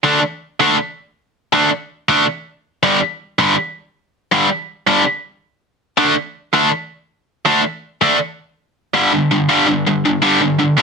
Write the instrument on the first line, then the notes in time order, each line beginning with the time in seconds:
distorted electric guitar
0.04 D3 A3 D4
0.60 D3 A3 D4
1.53 D3 A3 D4
2.09 D3 A3 D4
2.83 G2 D3 G3
3.39 G2 D3 G3
4.32 G2 D3 G3
4.87 G2 D3 G3
5.97 D3 A3 D4
6.54 D3 A3 D4
7.46 D3 A3 D4
8.01 D3 A3 D4
8.94 G2 D3 G3
9.13 G2 D3
9.31 G2 D3
9.49 G2 D3 G3
9.67 G2 D3
9.87 G2 D3
10.05 G2 D3
10.22 G2 D3 G3
10.41 G2 D3
10.59 G2 D3
10.78 G2 G3